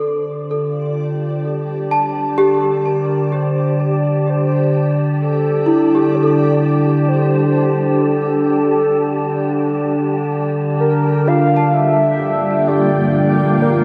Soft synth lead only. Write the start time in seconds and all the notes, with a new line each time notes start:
0.53 F4
1.46 G4
2.39 A4
2.86 A#4
3.34 C5
3.80 D5
4.29 C5
5.21 A4
6.15 D5
7.08 C5
8.01 A4
10.80 A#4
11.28 F5
11.74 E5
12.67 D5
13.62 A#4